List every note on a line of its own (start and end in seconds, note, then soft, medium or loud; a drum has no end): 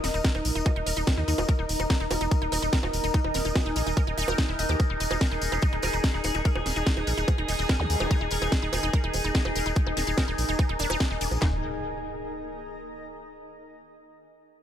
0.00 0.10 D#1 loud
0.00 11.40 D#4 medium
0.00 11.46 D#4 medium
0.00 0.09 D#4 medium
0.00 4.82 A#4 medium
0.00 11.42 A#4 medium
0.00 11.42 D#5 medium
0.00 1.93 A#5 medium
0.00 snare medium
0.00 open hi-hat loud
0.04 tambourine loud
0.14 0.20 D#1 medium
0.14 0.22 D#4 medium
0.14 closed hi-hat medium
0.14 tambourine medium
0.24 0.32 A#4 medium
0.24 kick loud
0.24 snare loud
0.24 closed hi-hat medium
0.35 0.41 D#1 medium
0.35 0.40 D#4 medium
0.35 closed hi-hat soft
0.35 high bongo soft
0.45 0.51 A#1 loud
0.45 open hi-hat loud
0.45 tambourine loud
0.55 0.62 D#1 medium
0.55 0.61 D#4 medium
0.55 closed hi-hat medium
0.55 tambourine medium
0.66 0.71 D#4 medium
0.66 kick loud
0.66 closed hi-hat medium
0.66 high bongo medium
0.76 0.82 D#1 medium
0.76 0.84 D#4 medium
0.76 closed hi-hat soft
0.86 0.93 D#1 loud
0.86 0.94 A#4 medium
0.86 open hi-hat loud
0.86 tambourine loud
0.96 1.03 D#1 loud
0.96 1.02 D#4 medium
0.96 closed hi-hat medium
0.96 tambourine medium
1.07 kick loud
1.07 snare loud
1.07 closed hi-hat medium
1.07 high bongo soft
1.18 1.24 D#2 medium
1.18 1.23 D#4 medium
1.28 1.34 D#2 loud
1.28 1.33 D#4 medium
1.28 open hi-hat loud
1.28 tambourine loud
1.38 1.44 D#1 medium
1.38 1.46 D#4 medium
1.38 closed hi-hat medium
1.38 tambourine medium
1.38 high bongo medium
1.49 1.56 A#4 medium
1.49 kick loud
1.49 closed hi-hat medium
1.59 1.65 D#1 medium
1.59 1.64 D#4 medium
1.69 1.76 D#1 loud
1.69 open hi-hat loud
1.69 tambourine medium
1.79 1.86 D#1 loud
1.79 1.85 D#4 medium
1.79 11.42 G#5 medium
1.79 closed hi-hat medium
1.79 tambourine medium
1.79 high bongo soft
1.90 1.95 D#4 medium
1.90 kick loud
1.90 snare loud
1.90 closed hi-hat medium
1.90 tambourine soft
2.00 2.07 D#1 medium
2.00 2.08 D#4 medium
2.00 closed hi-hat soft
2.10 2.17 D#1 loud
2.10 2.19 A#4 medium
2.10 open hi-hat loud
2.10 tambourine loud
2.10 high bongo medium
2.21 2.27 E1 medium
2.21 2.26 D#4 medium
2.21 closed hi-hat medium
2.21 tambourine medium
2.31 kick loud
2.31 closed hi-hat medium
2.31 tambourine soft
2.42 2.48 D#1 medium
2.42 2.47 D#4 medium
2.42 closed hi-hat soft
2.52 2.58 D#1 loud
2.52 2.57 D#4 medium
2.52 open hi-hat loud
2.52 tambourine loud
2.52 high bongo soft
2.62 2.69 D#1 medium
2.62 2.70 D#4 medium
2.62 closed hi-hat medium
2.62 tambourine medium
2.73 2.81 A#4 medium
2.73 kick loud
2.73 snare loud
2.73 closed hi-hat medium
2.73 tambourine soft
2.83 2.89 D#1 medium
2.83 2.88 D#4 medium
2.83 high bongo medium
2.93 3.00 D#1 loud
2.93 open hi-hat loud
2.93 tambourine medium
3.04 3.10 D#1 medium
3.04 3.09 D#4 medium
3.04 closed hi-hat medium
3.04 tambourine medium
3.14 3.19 D#4 medium
3.14 kick loud
3.14 closed hi-hat medium
3.14 tambourine soft
3.24 3.31 D#1 medium
3.24 3.32 D#4 medium
3.24 high bongo soft
3.34 3.41 D#1 loud
3.34 3.43 A#4 medium
3.34 snare medium
3.34 open hi-hat loud
3.34 tambourine loud
3.45 3.51 D#1 medium
3.45 3.50 D#4 medium
3.45 closed hi-hat medium
3.45 tambourine medium
3.56 kick loud
3.56 snare loud
3.56 closed hi-hat medium
3.56 high bongo medium
3.66 3.72 D#1 medium
3.66 3.71 D#4 medium
3.66 closed hi-hat soft
3.76 3.82 A#1 loud
3.76 3.81 D#4 medium
3.76 open hi-hat loud
3.76 tambourine loud
3.87 3.93 D#1 medium
3.87 3.94 D#4 medium
3.87 closed hi-hat medium
3.87 tambourine medium
3.97 4.05 A#4 medium
3.97 kick loud
3.97 closed hi-hat medium
3.97 high bongo soft
4.07 4.13 D#1 medium
4.07 4.13 D#4 medium
4.07 closed hi-hat soft
4.18 4.24 D#1 loud
4.18 4.21 D#4 loud
4.18 open hi-hat loud
4.18 tambourine medium
4.28 4.34 D#1 loud
4.28 4.31 A#4 loud
4.28 closed hi-hat medium
4.28 tambourine medium
4.28 high bongo medium
4.38 4.41 D#4 medium
4.38 kick loud
4.38 snare loud
4.38 closed hi-hat medium
4.38 tambourine soft
4.49 4.55 D#1 medium
4.49 4.52 E4 medium
4.59 4.65 D#1 loud
4.59 4.67 D#5 medium
4.59 open hi-hat loud
4.59 tambourine loud
4.69 4.76 D#2 medium
4.69 4.72 G4 medium
4.69 closed hi-hat medium
4.69 tambourine medium
4.69 high bongo soft
4.80 11.44 G#4 medium
4.80 kick loud
4.80 closed hi-hat medium
4.80 tambourine soft
4.80 high bongo soft
4.90 4.96 D#1 medium
4.90 4.95 D#4 medium
5.00 5.07 D#1 loud
5.00 5.06 D#4 medium
5.00 open hi-hat loud
5.00 tambourine medium
5.11 5.17 D#1 medium
5.11 5.19 D#4 medium
5.11 closed hi-hat medium
5.11 tambourine medium
5.11 high bongo medium
5.21 5.29 A#4 medium
5.21 kick loud
5.21 snare loud
5.21 closed hi-hat medium
5.21 tambourine soft
5.31 5.38 D#1 medium
5.31 5.37 D#4 medium
5.31 closed hi-hat soft
5.42 5.48 D#1 loud
5.42 open hi-hat loud
5.42 tambourine medium
5.52 5.58 E1 medium
5.52 5.57 D#4 medium
5.52 closed hi-hat medium
5.52 tambourine medium
5.52 high bongo soft
5.62 5.68 D#4 medium
5.62 kick loud
5.62 closed hi-hat medium
5.62 tambourine soft
5.73 5.79 D#1 medium
5.73 5.81 D#4 medium
5.73 closed hi-hat soft
5.82 5.89 D#1 loud
5.82 5.91 A#4 medium
5.82 open hi-hat loud
5.82 tambourine medium
5.82 high bongo medium
5.93 6.00 D#1 medium
5.93 5.99 D#4 medium
5.93 closed hi-hat medium
5.93 tambourine medium
6.04 kick loud
6.04 snare loud
6.04 closed hi-hat medium
6.04 tambourine soft
6.14 6.20 D#1 medium
6.14 6.19 D#4 medium
6.24 6.31 D#1 loud
6.24 6.30 D#4 medium
6.24 open hi-hat loud
6.24 tambourine loud
6.24 high bongo soft
6.35 6.41 D#1 medium
6.35 6.43 D#4 medium
6.35 closed hi-hat medium
6.45 6.53 A#4 medium
6.45 kick loud
6.45 closed hi-hat medium
6.45 tambourine soft
6.55 6.62 D#1 medium
6.55 6.61 D#4 medium
6.55 high bongo medium
6.66 6.72 D#1 loud
6.66 snare medium
6.66 open hi-hat loud
6.66 tambourine medium
6.76 6.82 D#1 medium
6.76 6.81 D#4 medium
6.76 closed hi-hat medium
6.76 tambourine medium
6.86 6.92 D#4 medium
6.86 kick loud
6.86 snare loud
6.86 closed hi-hat medium
6.86 tambourine soft
6.97 7.03 D#1 medium
6.97 7.05 D#4 medium
6.97 closed hi-hat soft
6.97 high bongo soft
7.07 7.13 A#1 loud
7.07 7.15 A#4 medium
7.07 open hi-hat loud
7.07 tambourine medium
7.18 7.24 D#1 medium
7.18 7.23 D#4 medium
7.18 closed hi-hat medium
7.18 tambourine medium
7.28 kick loud
7.28 closed hi-hat medium
7.28 tambourine soft
7.28 high bongo medium
7.38 7.45 D#1 medium
7.38 7.44 D#4 medium
7.38 closed hi-hat soft
7.48 7.55 D#1 loud
7.48 7.54 D#4 medium
7.48 open hi-hat loud
7.48 tambourine medium
7.59 7.65 D#1 loud
7.59 7.67 D#4 medium
7.59 closed hi-hat medium
7.59 tambourine medium
7.69 7.77 A#4 medium
7.69 kick loud
7.69 snare loud
7.69 closed hi-hat medium
7.69 high bongo soft
7.80 7.86 D#2 medium
7.80 7.85 D#4 medium
7.80 zap medium
7.90 7.96 D#2 loud
7.90 open hi-hat loud
7.90 tambourine loud
8.00 8.07 D#1 loud
8.00 8.06 D#4 medium
8.00 closed hi-hat medium
8.00 tambourine soft
8.00 high bongo medium
8.11 8.16 D#4 medium
8.11 kick loud
8.11 closed hi-hat medium
8.11 tambourine soft
8.21 8.27 D#1 medium
8.21 8.29 D#4 medium
8.31 8.38 D#1 loud
8.31 8.39 A#4 medium
8.31 open hi-hat loud
8.31 tambourine medium
8.42 8.48 D#1 loud
8.42 8.47 D#4 medium
8.42 closed hi-hat medium
8.42 tambourine medium
8.42 high bongo soft
8.52 kick loud
8.52 snare loud
8.52 closed hi-hat medium
8.52 tambourine soft
8.62 8.69 D#1 medium
8.62 8.68 D#4 medium
8.62 closed hi-hat soft
8.73 8.79 D#1 loud
8.73 8.78 D#4 medium
8.73 open hi-hat loud
8.73 tambourine medium
8.73 high bongo medium
8.83 8.89 E1 medium
8.83 8.91 D#4 medium
8.83 closed hi-hat medium
8.83 tambourine soft
8.93 9.01 A#4 medium
8.93 kick loud
8.93 closed hi-hat medium
8.93 tambourine soft
9.04 9.10 D#1 medium
9.04 9.09 D#4 medium
9.04 closed hi-hat soft
9.13 9.20 D#1 loud
9.13 open hi-hat loud
9.13 tambourine medium
9.13 high bongo soft
9.24 9.31 D#1 medium
9.24 9.30 D#4 medium
9.24 closed hi-hat medium
9.24 tambourine medium
9.34 9.40 D#4 medium
9.34 kick loud
9.34 snare loud
9.34 closed hi-hat medium
9.34 tambourine soft
9.45 9.51 D#1 medium
9.45 9.53 D#4 medium
9.45 high bongo medium
9.56 9.62 D#1 loud
9.56 9.63 A#4 medium
9.56 open hi-hat loud
9.56 tambourine medium
9.66 9.72 D#1 loud
9.66 9.71 D#4 medium
9.66 closed hi-hat medium
9.66 tambourine medium
9.76 kick loud
9.76 closed hi-hat medium
9.76 tambourine soft
9.87 9.93 D#1 medium
9.87 9.92 D#4 medium
9.87 high bongo soft
9.97 10.03 D#1 loud
9.97 10.02 D#4 medium
9.97 snare medium
9.97 open hi-hat loud
9.97 tambourine medium
10.07 10.13 D#1 loud
10.07 10.15 D#4 medium
10.07 closed hi-hat medium
10.07 tambourine medium
10.18 10.25 A#4 medium
10.18 kick loud
10.18 snare loud
10.18 closed hi-hat medium
10.18 tambourine soft
10.18 high bongo medium
10.28 10.34 D#1 medium
10.28 10.33 D#4 medium
10.28 closed hi-hat soft
10.38 10.44 A#1 loud
10.38 open hi-hat loud
10.38 tambourine loud
10.49 10.55 D#1 medium
10.49 10.54 D#4 medium
10.49 closed hi-hat medium
10.49 tambourine soft
10.59 10.64 D#4 medium
10.59 kick loud
10.59 closed hi-hat medium
10.59 high bongo soft
10.69 10.76 D#1 medium
10.69 10.77 D#4 medium
10.69 closed hi-hat soft
10.79 10.86 D#1 loud
10.79 10.83 D4 loud
10.79 open hi-hat loud
10.79 tambourine medium
10.90 10.96 D#1 medium
10.90 10.93 D#4 loud
10.90 closed hi-hat medium
10.90 tambourine medium
10.90 high bongo medium
11.00 11.06 D#4 medium
11.00 kick loud
11.00 snare loud
11.00 closed hi-hat medium
11.11 11.17 D#1 medium
11.11 11.19 D#4 medium
11.21 11.27 D#1 loud
11.21 11.26 D4 medium
11.21 open hi-hat loud
11.21 tambourine loud
11.31 11.38 A#1 medium
11.31 closed hi-hat medium
11.31 tambourine medium
11.31 high bongo soft
11.42 11.61 D#1 loud
11.42 13.03 D#4 medium
11.42 11.61 D#4 loud
11.42 kick loud
11.42 snare loud
11.42 clap medium
11.42 impact medium
11.48 13.03 A#4 medium
11.54 13.03 D#5 medium
11.60 13.03 A#5 medium